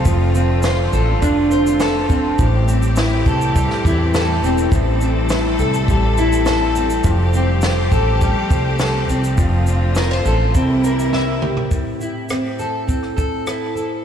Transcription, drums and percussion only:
0.05 kick, shaker
0.35 shaker
0.63 snare, shaker
0.93 shaker
1.22 kick, shaker
1.51 shaker
1.67 shaker
1.80 snare, shaker
2.10 kick, shaker
2.39 kick, shaker
2.68 shaker
2.82 shaker
2.96 snare, shaker
3.26 kick, shaker
3.41 shaker
3.56 kick, shaker
3.70 snare
3.85 kick, shaker
4.14 snare, shaker
4.44 shaker
4.58 shaker
4.72 kick, shaker
5.01 shaker
5.29 snare, shaker
5.59 shaker
5.74 shaker
5.88 kick, shaker
6.18 shaker
6.32 shaker
6.46 snare, shaker
6.75 shaker
6.90 shaker
7.04 kick, shaker
7.33 shaker
7.62 snare, shaker
7.92 kick, shaker
8.21 kick, shaker
8.51 kick, shaker
8.79 snare, shaker
9.09 shaker
9.24 shaker
9.38 kick, shaker
9.67 shaker
9.95 snare, shaker
10.25 shaker
10.55 kick, shaker
10.84 shaker
10.99 shaker
11.13 snare
11.42 mid tom
11.57 floor tom
11.71 kick, shaker
12.01 shaker
12.29 cross-stick, shaker
12.59 shaker
12.89 kick, shaker
13.03 cross-stick
13.18 kick, shaker
13.47 cross-stick, shaker
13.77 shaker

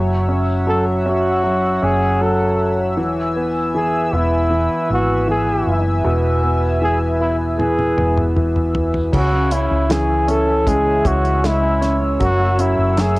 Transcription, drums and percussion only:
7.60 high tom
7.79 high tom
7.98 mid tom
8.17 mid tom
8.37 mid tom
8.56 mid tom
8.75 floor tom
8.94 floor tom
9.13 kick, crash
9.51 closed hi-hat
9.90 snare, closed hi-hat
10.29 closed hi-hat
10.67 kick, closed hi-hat
11.05 kick, closed hi-hat
11.25 closed hi-hat
11.44 snare, closed hi-hat
11.82 snare, closed hi-hat
12.20 kick, closed hi-hat
12.59 closed hi-hat
12.97 snare, closed hi-hat

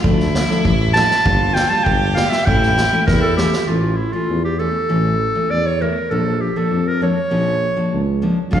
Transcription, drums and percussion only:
0.04 kick
0.20 snare
0.35 snare
0.50 snare
0.65 kick
0.96 snare
1.11 snare
1.26 kick
1.56 snare
1.86 kick
2.17 snare
2.32 snare
2.47 kick
2.63 snare
2.78 snare
3.08 kick, snare
3.38 snare
3.53 snare
8.53 kick

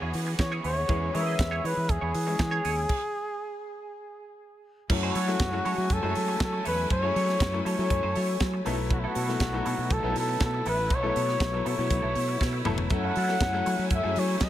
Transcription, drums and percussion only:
0.14 open hi-hat
0.39 kick, snare, closed hi-hat
0.64 open hi-hat
0.89 kick, closed hi-hat
1.15 open hi-hat
1.39 kick, snare, closed hi-hat
1.65 open hi-hat
1.89 kick, closed hi-hat
2.14 open hi-hat
2.39 kick, snare, closed hi-hat
2.65 open hi-hat
2.89 kick, crash
4.90 kick, crash
5.15 open hi-hat
5.28 snare
5.40 kick, snare, closed hi-hat
5.65 open hi-hat
5.90 kick, closed hi-hat
6.15 open hi-hat
6.40 kick, snare, closed hi-hat
6.65 open hi-hat
6.90 kick, closed hi-hat
7.16 open hi-hat
7.29 snare
7.40 kick, snare, closed hi-hat
7.66 open hi-hat
7.90 kick, closed hi-hat
8.16 open hi-hat
8.40 kick, snare, closed hi-hat
8.66 open hi-hat
8.90 kick, closed hi-hat
9.15 open hi-hat
9.29 snare
9.40 kick, snare, closed hi-hat
9.66 open hi-hat
9.90 kick, closed hi-hat
10.16 open hi-hat
10.40 kick, snare, closed hi-hat
10.65 open hi-hat
10.90 kick, closed hi-hat
11.16 open hi-hat
11.29 snare
11.40 kick, snare, closed hi-hat
11.66 open hi-hat
11.90 kick, closed hi-hat
12.15 open hi-hat
12.41 kick, snare
12.65 mid tom
12.78 floor tom
12.90 kick, closed hi-hat
13.16 open hi-hat
13.29 snare
13.40 kick, snare, closed hi-hat
13.66 open hi-hat
13.90 kick, closed hi-hat
14.16 open hi-hat
14.40 kick, snare, closed hi-hat

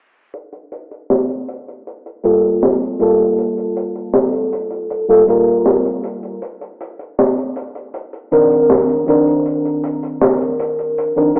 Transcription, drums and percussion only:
0.34 closed hi-hat
0.52 closed hi-hat
0.72 closed hi-hat
0.91 closed hi-hat
1.10 snare, closed hi-hat
1.29 closed hi-hat
1.48 closed hi-hat
1.68 closed hi-hat
1.87 closed hi-hat
2.06 closed hi-hat
2.24 closed hi-hat
2.43 closed hi-hat
2.62 snare, closed hi-hat
2.82 closed hi-hat
3.00 closed hi-hat
3.20 closed hi-hat
3.38 closed hi-hat
3.57 closed hi-hat
3.76 closed hi-hat
3.95 closed hi-hat
4.14 snare, closed hi-hat
4.33 closed hi-hat
4.53 closed hi-hat
4.70 closed hi-hat
4.90 closed hi-hat
5.10 closed hi-hat
5.28 closed hi-hat
5.47 closed hi-hat
5.66 snare, closed hi-hat
5.85 closed hi-hat
6.04 closed hi-hat
6.23 closed hi-hat
6.42 closed hi-hat
6.61 closed hi-hat
6.80 closed hi-hat
6.99 closed hi-hat
7.18 snare, closed hi-hat
7.37 closed hi-hat
7.56 closed hi-hat
7.75 closed hi-hat
7.93 closed hi-hat
8.13 closed hi-hat
8.32 closed hi-hat
8.51 closed hi-hat
8.69 snare, closed hi-hat
8.89 closed hi-hat
9.08 closed hi-hat
9.27 closed hi-hat
9.46 closed hi-hat
9.65 closed hi-hat
9.83 closed hi-hat
10.03 closed hi-hat
10.21 snare, closed hi-hat
10.41 closed hi-hat
10.59 closed hi-hat
10.79 closed hi-hat
10.98 closed hi-hat
11.18 closed hi-hat
11.36 closed hi-hat

